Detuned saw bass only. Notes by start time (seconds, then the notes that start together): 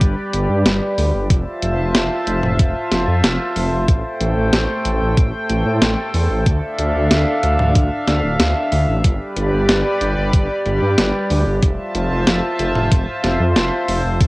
0.01 G1
0.33 G1
0.49 G2
0.66 G1
0.98 D2
1.14 G1
1.30 F1
1.62 F1
1.78 F1
1.95 F1
2.27 F1
2.43 F1
2.59 F1
2.92 F1
3.08 F2
3.24 F1
3.56 F1
3.72 F1
3.88 A1
4.20 A1
4.37 A1
4.53 A1
4.85 A1
5.01 A1
5.17 A1
5.50 A1
5.66 A2
5.82 A1
6.14 E2
6.30 A1
6.46 D2
6.79 D2
6.95 D2
7.11 D2
7.43 D2
7.59 D2
7.75 D2
8.08 D2
8.24 D1
8.40 D2
8.72 D2
8.88 A1
9.04 G1
9.37 G1
9.53 G1
9.69 G1
10.01 G1
10.17 G1
10.33 G1
10.66 G1
10.82 G2
10.98 G1
11.30 D2
11.46 G1
11.62 F1
11.95 F1
12.11 F1
12.27 F1
12.59 F1
12.75 F1
12.92 F1
13.24 F1
13.40 F2
13.56 F1
13.88 F1
14.04 F1
14.21 A1